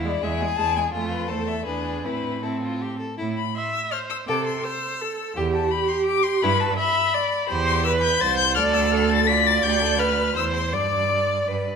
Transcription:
Already playing: cello E2, violin E4
0.05 viola G#3, violin D5
0.22 cello E2, viola G#3, violin G#4 E5
0.40 viola G#3, violin G#5
0.57 cello E2, viola G#3, violin A5
0.76 viola G#3, violin G#5
0.93 cello F2, viola A3, violin F4
1.10 violin B4
1.28 cello E2, viola A3, violin A4 C5
1.48 violin E5
1.65 cello E2, viola D4, violin G#4 B4
2.05 cello A2, viola C4, violin E4 B4
2.43 viola C4, violin E4 A4
2.63 violin F4
2.82 violin G4
3.00 violin A4
3.18 cello A2, violin E4
3.37 violin B5
3.55 viola E5, violin C6
3.73 violin E6
3.91 viola C5, violin F6
4.10 violin E6
4.28 cello C3, violin A4 D6, viola A4
4.47 violin C6
4.64 viola C5, violin E6
5.02 viola A4
5.35 cello E2, violin G4, viola G4
5.53 violin A5
5.71 violin B5
5.88 violin C6
6.06 violin D6
6.23 violin C6
6.42 cello G2, violin E4 B5, viola B4
6.60 violin A5
6.78 viola E5, violin B5
7.14 viola D5
7.49 cello E2, violin G4, viola C5
7.66 violin C6
7.84 violin B4 E6, viola B4
8.02 violin G6
8.21 cello C2, violin C5 A6, viola C5
8.37 violin G6
8.55 cello D2, violin A4 F6, viola D5
8.74 violin E6
8.91 violin A4 F6, viola A4
9.10 violin A6
9.27 violin F4 B6, viola D5
9.47 violin A6
9.63 cello D2, violin G4 G6
9.82 violin A4
9.99 viola B4, violin B4 F6
10.34 cello E2, violin C5 E6, viola C5
10.54 violin C6
10.73 cello G2, violin D5 D6, viola D5
11.48 cello G2, violin B4

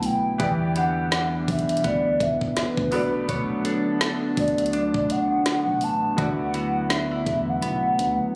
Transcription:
Already playing: grand piano D3 F#3 B3 E4 D5, analog synth pad D3 F#3 A3 B3 E4, clean electric guitar D3 B3 E4
0.03 fm bass B1, soft synth lead G5, open hi-hat
0.38 fm bass E2, analog synth pad D3 E3 G3 B3, grand piano E3 B3 E4 G4, clean electric guitar E3 G4, kick, closed hi-hat
0.42 grand piano D5
0.76 clean electric guitar B3 D4 G4, soft synth lead F#5, closed hi-hat
1.12 clean electric guitar D4, soft synth lead F#5, snare, closed hi-hat
1.48 fm bass B1, soft synth lead E5, kick, closed hi-hat, open hi-hat
1.59 closed hi-hat
1.69 closed hi-hat
1.77 closed hi-hat
1.84 fm bass D2, clean electric guitar B3, soft synth lead D5, kick, closed hi-hat
2.20 fm bass C#2, soft synth lead E5, kick, closed hi-hat
2.41 kick
2.57 fm bass D2, soft synth lead B4, snare, closed hi-hat
2.77 fm bass D2, kick
2.91 fm bass B1, grand piano B2 B3 D4 A4, analog synth pad D3 F#3 A3 D4, clean electric guitar B3, open hi-hat
2.95 grand piano D5
3.29 clean electric guitar B3 C#5, kick, closed hi-hat
3.65 clean electric guitar D4 A4, closed hi-hat
4.01 clean electric guitar A4, snare, closed hi-hat
4.37 fm bass D2, soft synth lead D5, kick, closed hi-hat, open hi-hat
4.48 closed hi-hat
4.58 closed hi-hat
4.66 closed hi-hat
4.73 clean electric guitar D4, closed hi-hat
4.94 kick
5.10 fm bass B1, soft synth lead F#5, closed hi-hat
5.46 snare, closed hi-hat
5.67 fm bass B1
5.81 fm bass A1, soft synth lead A5, open hi-hat
6.17 fm bass D2, grand piano D3 B3 E4 F#4 D5, analog synth pad D3 F#3 E4, clean electric guitar D3 F#4, soft synth lead F#5, kick, closed hi-hat
6.54 clean electric guitar B3 E4 F#4, closed hi-hat
6.86 soft synth lead F#5
6.90 clean electric guitar D4, soft synth lead E5, snare, closed hi-hat
7.11 clean electric guitar E4
7.26 fm bass E2, kick, closed hi-hat
7.50 soft synth lead F#5
7.62 fm bass B1, clean electric guitar B3, closed hi-hat
7.99 fm bass D2, closed hi-hat

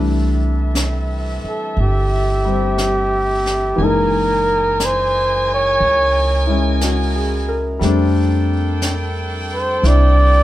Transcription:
Already playing: upright bass C2, grand piano E3 G3 A3 D4, saxophone section C4 A4 E5
0.75 brush sweep, snare, hi-hat pedal
1.44 muted upright bass stroke
1.48 flugelhorn A4
1.77 upright bass G1, flugelhorn G4, brush sweep
2.45 grand piano G3 C4
2.78 brush sweep, snare, hi-hat pedal
3.46 snare
3.76 upright bass F#1, grand piano E3 G#3 A#3, saxophone section A#4 D#5 G#5, brush sweep
3.81 grand piano D#4, flugelhorn A#4
4.80 brush sweep, snare, hi-hat pedal
4.85 flugelhorn C5
5.54 flugelhorn C#5
5.80 upright bass C#2, brush sweep
6.47 grand piano G#3 C#4 E4
6.81 grand piano F#4, brush sweep, snare, hi-hat pedal
7.15 grand piano G#4
7.49 grand piano A#4
7.79 upright bass F2, grand piano G3 A3 C4, saxophone section D4 A4 G5, brush sweep, snare
7.84 grand piano D4
8.82 brush sweep, snare, hi-hat pedal
9.54 flugelhorn C5
9.81 upright bass C2, grand piano C4 D4 E4, brush sweep, snare
9.87 flugelhorn D5

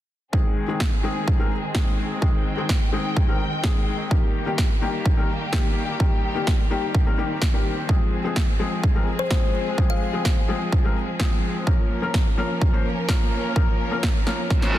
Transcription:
0.33 felt piano D#3 G#3 C4 G#4, string section D#3 G#3 C4 G#4, kick
0.68 felt piano D#3 G#3 C4 G#4
0.80 kick, snare
1.03 felt piano D#3 G#3 C4 G#4
1.28 kick
1.39 felt piano D#3 G#3 C4 A#4
1.74 felt piano D#3 G#3 C4 G#4, kick, snare
2.21 felt piano D#3 G#3 C4 G#4, string section G5, kick
2.57 felt piano D#3 G#3 C4 G#4
2.69 kick, snare
2.92 felt piano D#3 G#3 C4 G#4
3.17 kick
3.28 felt piano D#3 G#3 C4 A#4
3.63 felt piano D#3 G#3 C4 G#4, kick, snare
4.11 felt piano D#3 G3 A#3 G4, string section G3 A#3 G4, kick
4.46 felt piano D#3 G3 A#3 G4
4.58 kick, snare
4.81 felt piano D#3 G3 A#3 G4
5.06 kick
5.17 felt piano D#3 G3 A#3 A#4
5.52 felt piano D#3 G3 A#3 G4, kick, snare
6.00 felt piano D#3 G3 A#3 G4, string section C4, kick
6.35 felt piano D#3 G3 A#3 G4
6.47 kick, snare
6.70 felt piano D#3 G3 A#3 G4
6.95 kick
7.06 felt piano D#3 G3 A#3 A#4
7.18 felt piano D#3 G3 A#3 G4
7.42 kick, snare
7.53 felt piano D#3 G3 A#3 G4
7.88 felt piano F3 G#3 C4 G#4, string section F3 G#3 G#4, kick
8.24 felt piano F3 G#3 C4 G#4
8.36 kick, snare
8.59 felt piano F3 G#3 C4 G#4
8.84 kick
8.95 felt piano F3 G#3 C4 A#4
9.19 kalimba C5
9.30 felt piano F3 G#3 C4 G#4, kick, snare
9.78 felt piano F3 G#3 C4 G#4, kick
9.90 kalimba F5
10.13 felt piano F3 G#3 C4 G#4
10.25 kick, snare
10.48 felt piano F3 G#3 C4 G#4
10.72 kick
10.84 felt piano F3 G#3 C4 A#4
11.19 felt piano F3 G#3 C4 G#4, kick, snare
11.66 felt piano F3 A#3 C#4 A#4, string section A#3 C#4 A#4, kick
12.02 felt piano F3 A#3 C#4 A#4
12.14 kick, snare
12.37 felt piano F3 A#3 C#4 A#4
12.61 kick
12.73 felt piano F3 A#3 C#4 C5
13.08 felt piano F3 A#3 C#4 A#4, kick, snare
13.55 felt piano F3 A#3 C#4 A#4, kick
13.91 felt piano F3 A#3 C#4 A#4
14.03 kick, snare
14.26 felt piano F3 A#3 C#4 A#4, snare
14.50 kick, snare, reverse cymbal
14.62 felt piano F3 A#3 C#4 C5, snare
14.74 felt piano F3 A#3 C#4 A#4

